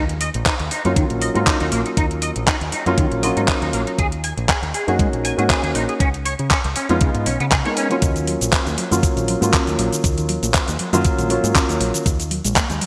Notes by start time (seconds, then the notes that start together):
Already playing: D#2
0.09 closed hi-hat
0.21 D#5, open hi-hat
0.34 A#1, closed hi-hat
0.46 D#4, kick, clap, closed hi-hat
0.60 D#2, closed hi-hat
0.71 D#4, open hi-hat
0.85 F#2 F#3 A#3 C#4 D#4 F4, closed hi-hat
0.96 D#3, kick, closed hi-hat
1.10 A#1, closed hi-hat
1.22 D#5, open hi-hat
1.34 G#2 F#3 A#3 C#4 D#4 F4, closed hi-hat
1.47 D#4, kick, clap, closed hi-hat
1.60 D#2 D#4, closed hi-hat
1.72 A#1 A#3, open hi-hat
1.86 D#4, closed hi-hat
1.97 D#2 D#4, kick, closed hi-hat
2.11 closed hi-hat
2.22 D#5, open hi-hat
2.36 A#1, closed hi-hat
2.47 D#4, kick, clap, closed hi-hat
2.61 D#2, closed hi-hat
2.72 D#4, muted picked electric bass stroke, open hi-hat
2.86 F#2 F#3 A#3 C#4 D#4 F4, closed hi-hat
2.98 D#3, kick, closed hi-hat
3.12 A#1, closed hi-hat
3.22 F#3 A#3 C#4 F4 D#5, open hi-hat
3.37 G#2 D#4, closed hi-hat
3.48 D#4, kick, clap, closed hi-hat
3.62 D#2 D#4, closed hi-hat
3.73 A#1 A#3, open hi-hat
3.87 D#4, closed hi-hat
3.99 D#2 G#4, kick, closed hi-hat
4.12 closed hi-hat
4.24 G#5, open hi-hat
4.37 A#1, closed hi-hat
4.49 G#4, kick, clap, closed hi-hat
4.62 D#2, closed hi-hat
4.74 G#4, open hi-hat
4.87 F#2 A#3 C#4 D#4 F#4 G#4, closed hi-hat
4.99 G#3, kick, closed hi-hat
5.13 A#1, closed hi-hat
5.25 G#5, open hi-hat
5.37 G#2 A#3 C#4 D#4 F#4 G#4, closed hi-hat
5.50 G#4, kick, clap, closed hi-hat
5.63 D#2 G#4, closed hi-hat
5.75 A#1 D#4, open hi-hat
5.89 G#4, closed hi-hat
6.00 C#2 C#4, kick, closed hi-hat
6.14 closed hi-hat
6.25 C#5, open hi-hat
6.39 C#3, closed hi-hat
6.51 C#4, kick, clap, closed hi-hat
6.64 C#2, closed hi-hat
6.76 C#4, muted picked electric bass stroke, open hi-hat
6.89 F2 G#3 B3 C#4 D#4 F4, closed hi-hat
7.01 C#3, kick, closed hi-hat
7.15 G#2, closed hi-hat
7.26 B1 C#4, open hi-hat
7.40 C#3 B3, closed hi-hat
7.51 C#3 G#4, kick, clap, closed hi-hat
7.65 G#3 B3 D#4 A#4 C#5, closed hi-hat
7.77 C#4, open hi-hat
7.89 F#3 A#3 C#4 F4, closed hi-hat
8.02 D#2 C#3, kick, closed hi-hat, shaker
8.16 D#3, closed hi-hat, shaker
8.27 F#3, open hi-hat
8.41 A#1 A#3, closed hi-hat, shaker
8.53 C#4, kick, clap, closed hi-hat, shaker
8.66 D#2 A#3, closed hi-hat, shaker
8.78 F#3, open hi-hat
8.91 F#2 D#3 F#3 A#3 C#4 F4, closed hi-hat, shaker
9.03 kick, closed hi-hat, shaker
9.17 A#1 D#3, closed hi-hat, shaker
9.28 F#3, open hi-hat
9.41 G#2 F#3 A#3 C#4 F4, closed hi-hat, shaker
9.53 C#4, kick, clap, closed hi-hat, shaker
9.67 D#2 A#3, closed hi-hat, shaker
9.78 A#1 F#3, open hi-hat
9.93 D#3, closed hi-hat, shaker
10.04 D#2 C#3, kick, closed hi-hat, shaker
10.18 D#3, closed hi-hat, shaker
10.29 F#3, open hi-hat
10.43 A#1 A#3, closed hi-hat, shaker
10.54 C#4, kick, clap, closed hi-hat, shaker
10.68 D#2 A#3, closed hi-hat, shaker
10.79 F#3, open hi-hat
10.93 F#2 D#3 F#3 A#3 C#4 F4, closed hi-hat, shaker
11.05 C#3, kick, closed hi-hat, shaker
11.19 A#1 D#3, closed hi-hat, shaker
11.29 F#3 A#3 C#4 F4, open hi-hat
11.44 G#2 A#3, closed hi-hat, shaker
11.55 C#4, kick, clap, closed hi-hat, shaker
11.69 D#2 A#3, closed hi-hat, shaker
11.80 A#1 F#3, open hi-hat
11.94 D#3, closed hi-hat, shaker
12.06 D#2 C#3, kick, closed hi-hat, shaker
12.19 D#3, closed hi-hat, shaker
12.31 F#3, open hi-hat
12.45 A#1 G#3, closed hi-hat, shaker
12.56 A#3, kick, clap, closed hi-hat, shaker
12.70 D#2 G#3, closed hi-hat, shaker
12.81 F#3, open hi-hat